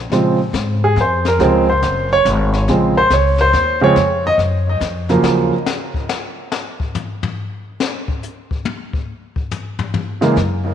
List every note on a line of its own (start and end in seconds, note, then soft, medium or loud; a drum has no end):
0.10 0.52 A#2 medium
0.10 0.37 C#3 medium
0.10 0.37 F3 medium
0.10 0.37 G#3 medium
0.10 0.38 C4 medium
0.10 brush sweep soft
0.10 snare soft
0.53 0.95 G#2 medium
0.53 snare medium
0.53 hi-hat pedal medium
0.84 0.98 G#4 medium
0.96 1.38 F2 medium
0.96 snare soft
1.01 1.26 C5 medium
1.25 1.66 A#4 medium
1.25 snare soft
1.39 1.81 C#2 medium
1.39 1.65 C#3 medium
1.39 1.65 F3 medium
1.39 1.65 G#3 medium
1.39 1.66 C4 medium
1.39 brush sweep medium
1.39 snare soft
1.69 2.08 C5 medium
1.82 2.24 F#1 medium
1.82 snare medium
1.82 hi-hat pedal medium
2.13 2.26 C#5 loud
2.25 2.67 G#1 loud
2.25 snare medium
2.25 hi-hat pedal medium
2.53 snare soft
2.68 3.09 A#1 medium
2.68 2.93 C#3 medium
2.68 2.94 F3 medium
2.68 2.94 G#3 medium
2.68 2.94 C4 medium
2.68 brush sweep medium
2.68 snare soft
2.97 3.11 C5 medium
3.10 3.52 C#2 medium
3.10 3.39 C#5 medium
3.10 snare medium
3.10 hi-hat pedal medium
3.38 3.79 C5 medium
3.38 snare soft
3.53 3.95 D#2 medium
3.53 snare soft
3.81 3.95 C#3 medium
3.81 3.95 F3 medium
3.81 3.95 G#3 medium
3.81 3.95 C4 medium
3.81 4.22 C#5 loud
3.96 4.37 F2 medium
3.96 brush sweep medium
3.96 snare soft
4.27 4.35 D#5 loud
4.38 4.80 F#2 medium
4.38 snare soft
4.80 5.22 F2 medium
4.80 snare medium
4.80 hi-hat pedal medium
5.09 5.52 C#3 medium
5.09 5.52 F3 medium
5.09 5.52 F#3 medium
5.09 5.52 A#3 medium
5.09 snare soft
5.22 5.49 D#2 medium
5.22 snare medium
5.66 snare loud
5.66 hi-hat pedal medium
5.94 kick medium
6.09 snare loud
6.52 snare loud
6.80 kick medium
6.95 floor tom medium
6.95 hi-hat pedal medium
7.23 floor tom loud
7.80 snare loud
8.08 kick medium
8.23 hi-hat pedal medium
8.51 kick medium
8.65 high tom medium
8.93 kick medium
9.36 kick medium
9.51 floor tom loud
9.51 hi-hat pedal medium
9.79 floor tom medium
9.94 floor tom medium
10.21 10.35 C#3 medium
10.21 10.35 E3 medium
10.21 10.35 G#3 medium
10.21 10.36 A#3 medium
10.21 snare soft
10.36 10.74 F#2 medium
10.36 brush sweep soft
10.36 snare soft